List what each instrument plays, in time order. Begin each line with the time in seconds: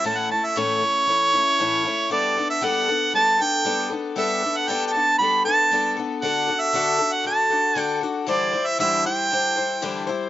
0.04 twelve-string acoustic guitar A2 E3 A3 C#4 E4, harmonica A5
0.17 harmonica F#5
0.30 twelve-string acoustic guitar A3 C#4 E4, harmonica A5
0.45 harmonica E5
0.56 twelve-string acoustic guitar A2 E3 A3 C#4 E4, harmonica C#5
0.82 twelve-string acoustic guitar C#4 E4
1.07 twelve-string acoustic guitar E3 A3 C#4 E4
1.33 twelve-string acoustic guitar A3 C#4 E4
1.59 twelve-string acoustic guitar A2 E3 A3 C#4 E4
1.84 twelve-string acoustic guitar A3 C#4 E4
2.10 twelve-string acoustic guitar G3 B3 D4 A4, harmonica D5
2.36 twelve-string acoustic guitar B3 D4 A4
2.50 harmonica E5
2.61 twelve-string acoustic guitar G3 B3 D4 A4, harmonica F#5
2.88 twelve-string acoustic guitar B3 D4 A4
3.13 twelve-string acoustic guitar G3 B3 D4 A4, harmonica A5
3.39 twelve-string acoustic guitar B3 D4 A4, harmonica G5
3.64 twelve-string acoustic guitar G3 B3 D4 A4
3.90 twelve-string acoustic guitar B3 D4 A4
4.16 twelve-string acoustic guitar G3 B3 D4 A4, harmonica E5
4.43 twelve-string acoustic guitar D4 A4
4.57 harmonica F#5
4.68 twelve-string acoustic guitar G3 B3 D4 A4, harmonica G5
4.87 harmonica G5
4.92 twelve-string acoustic guitar B3 A4, harmonica A5
4.97 twelve-string acoustic guitar D4
5.18 twelve-string acoustic guitar G3 B3 D4, harmonica B5
5.23 twelve-string acoustic guitar A4
5.45 twelve-string acoustic guitar B3 D4 A4, harmonica A5
5.71 twelve-string acoustic guitar G3 B3 D4 A4
5.97 twelve-string acoustic guitar B3 D4 A4
6.21 twelve-string acoustic guitar D3 D4 F#4 A4, harmonica F#5
6.48 twelve-string acoustic guitar D4 F#4 A4
6.61 harmonica E5
6.73 twelve-string acoustic guitar D3 D4 F#4 A4
6.98 twelve-string acoustic guitar D4 F#4 A4
7.12 harmonica F#5
7.24 twelve-string acoustic guitar D3 D4 F#4 A4, harmonica A5
7.50 twelve-string acoustic guitar D4 F#4 A4
7.75 twelve-string acoustic guitar D3 D4 F#4 A4
7.80 harmonica G5
8.01 twelve-string acoustic guitar D4 F#4 A4
8.27 twelve-string acoustic guitar D3 E3 G3 E4 C5, harmonica D5
8.53 twelve-string acoustic guitar G3 E4 C5
8.67 harmonica E5
8.79 twelve-string acoustic guitar D3 E3 G3 E4 C5, harmonica E5
9.05 twelve-string acoustic guitar G3 E4 C5, harmonica G5
9.30 twelve-string acoustic guitar D3 G3 E4 C5
9.56 twelve-string acoustic guitar G3 E4 C5
9.82 twelve-string acoustic guitar D3 E3 G3 E4 C5
10.07 twelve-string acoustic guitar G3 E4 C5